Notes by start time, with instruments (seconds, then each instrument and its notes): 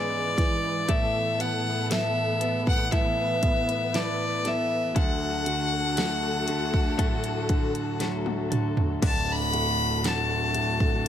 Already playing: grand piano G#2 E3 G#3 B3, string section G#2 C#3 E3 B4, clean electric guitar G#3 B3 E4 G#4, violin D5
0.38 grand piano E3, kick, snare, closed hi-hat
0.88 string section A2 B3 A4, grand piano A2, clean electric guitar A3 B3 E4 A4, violin E5, kick, closed hi-hat
1.39 grand piano B3, clean electric guitar B3 E4 A4, violin F#5, closed hi-hat
1.90 clean electric guitar A3 B3 E4 A4, grand piano A4, violin E5, snare, closed hi-hat
2.40 grand piano B3, clean electric guitar B3 E4 A4, closed hi-hat
2.67 violin F#5, kick
2.90 grand piano E3, clean electric guitar A3 B3 E4 A4, string section B4, violin E5, kick, closed hi-hat
3.42 grand piano B3, kick, closed hi-hat
3.69 closed hi-hat
3.93 clean electric guitar A3 B3 E4 A4, grand piano E4, violin D5, snare, closed hi-hat
4.45 grand piano B3, clean electric guitar B3 E4 A4, violin E5, snare, closed hi-hat
4.95 grand piano D2, string section D2 D3 F#4 A4, clean electric guitar D3 F#3 A3 F#4 A4, violin F#5, kick, closed hi-hat
5.46 grand piano D3, clean electric guitar A3 F#4 A4, closed hi-hat
5.96 clean electric guitar F#3 A3 F#4 A4, grand piano A3, snare, closed hi-hat
6.46 grand piano D3, clean electric guitar A3 F#4 A4, closed hi-hat
6.74 kick
6.97 grand piano A2, clean electric guitar D3 F#3 A3 F#4 A4, kick, closed hi-hat
7.24 closed hi-hat
7.49 grand piano D3, kick, closed hi-hat
7.75 closed hi-hat
8.00 clean electric guitar F#3 A3 F#4 A4, grand piano F#3, snare, closed hi-hat
8.26 high tom
8.50 grand piano D3, clean electric guitar A3 F#4 A4, closed hi-hat, mid tom
8.77 floor tom
9.02 grand piano D1 D2, string section D2 D3 F#4 A4, clean electric guitar D3 F#3 A3 D4 F#4, kick, closed hi-hat, crash
9.07 violin A5
9.32 violin B5
9.53 grand piano A2, clean electric guitar A3 D4 F#4, closed hi-hat
10.03 grand piano D3, clean electric guitar F#3 A3 D4 F#4, snare, closed hi-hat
10.08 violin A5
10.55 grand piano A2, closed hi-hat
10.80 kick